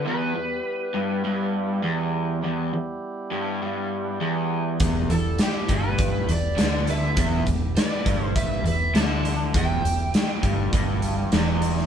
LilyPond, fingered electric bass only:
\new Staff \with { instrumentName = "Fingered electric bass" } { \clef bass \time 4/4 \key e \minor \tempo 4 = 101 r1 | r1 | e,,8 e,,8 r8 g,,4 e,,8 d,4 | e,,8 e,,8 r8 g,,4 e,,8 d,4 |
e,,8 e,,8 r8 g,,8 g,,4 e,,4 | }